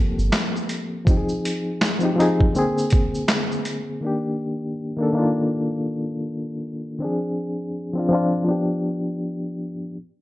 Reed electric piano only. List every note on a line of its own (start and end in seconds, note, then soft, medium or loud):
0.00 1.05 F3 medium
0.00 1.08 A#3 medium
0.00 1.07 C4 medium
0.00 0.24 G4 medium
0.00 1.09 A4 medium
1.05 1.69 F3 medium
1.05 1.70 C4 medium
1.05 1.71 D#4 medium
1.11 1.16 G4 medium
1.17 1.75 G#4 medium
1.99 2.11 F3 medium
1.99 2.12 C4 medium
1.99 2.13 D#4 medium
2.05 2.14 G4 medium
2.16 2.54 F3 medium
2.16 2.55 C4 medium
2.16 2.56 D#4 medium
2.22 2.57 G#4 medium
2.52 3.73 D3 medium
2.52 3.74 A#3 medium
2.52 3.75 C4 medium
2.58 3.76 G#4 medium
4.01 4.65 D#3 medium
4.01 4.66 A#3 medium
4.01 4.67 D4 medium
4.06 4.68 G4 medium
4.97 5.08 D#3 medium
4.97 5.09 A#3 medium
4.97 5.10 D4 medium
5.02 5.11 A4 medium
5.13 6.13 D#3 medium
5.13 6.15 A#3 medium
5.17 6.16 D4 medium
5.17 6.16 F4 medium
6.99 7.07 D#3 soft
6.99 7.63 C4 medium
6.99 7.64 D4 medium
7.04 7.65 F3 medium
7.04 7.65 G#4 medium
7.93 8.04 F3 medium
7.93 8.05 C4 medium
7.97 8.06 D4 medium
7.97 8.07 F4 medium
8.09 8.43 F3 medium
8.09 8.48 C4 medium
8.13 8.47 D4 medium
8.13 8.50 F4 medium
8.45 9.66 F3 medium
8.45 9.67 B3 medium
8.45 9.68 D4 medium
8.51 9.69 G4 medium